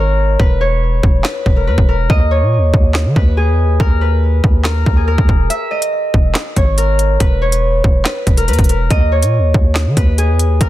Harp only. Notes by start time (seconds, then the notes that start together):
Already playing: G#4 A#4 C#5 D#5
0.40 B4
0.61 C#5
1.25 B4
1.56 A#4
1.67 B4
1.89 A#4
2.10 D#5
2.31 C#5
3.16 B4
3.37 G#4
3.80 A#4
4.01 B4
4.65 A#4
4.97 G#4
5.08 A#4
5.50 E5
5.71 D#5
6.57 C#5
6.78 A#4
7.21 B4
7.42 C#5
8.06 B4
8.37 A#4
8.48 B4
8.69 A#4
8.91 D#5
9.12 C#5
9.97 B4
10.18 G#4
10.61 A#4